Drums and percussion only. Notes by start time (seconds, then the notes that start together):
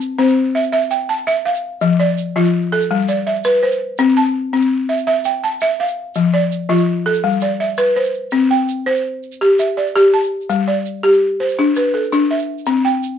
0.01 shaker
0.28 shaker
0.55 shaker
0.63 shaker
0.82 shaker
0.91 shaker
1.18 shaker
1.27 shaker
1.55 shaker
1.81 shaker
2.18 shaker
2.45 shaker
2.72 shaker
2.81 shaker
2.99 shaker
3.09 shaker
3.36 shaker
3.44 shaker
3.71 shaker
3.98 shaker
4.62 shaker
4.89 shaker
4.98 shaker
5.24 shaker
5.52 shaker
5.61 shaker
5.88 shaker
6.15 shaker
6.52 shaker
6.70 shaker
6.78 shaker
7.14 shaker
7.23 shaker
7.32 shaker
7.41 shaker
7.78 shaker
7.87 shaker
7.96 shaker
8.04 shaker
8.14 shaker
8.31 shaker
8.69 shaker
8.96 shaker
9.23 shaker
9.32 shaker
9.59 shaker
9.77 shaker
9.87 shaker
9.96 shaker
10.23 shaker
10.41 shaker
10.50 shaker
10.86 shaker
11.13 shaker
11.40 shaker
11.49 shaker
11.76 shaker
11.94 shaker
12.04 shaker
12.13 shaker
12.39 shaker
12.58 shaker
12.66 shaker
13.03 shaker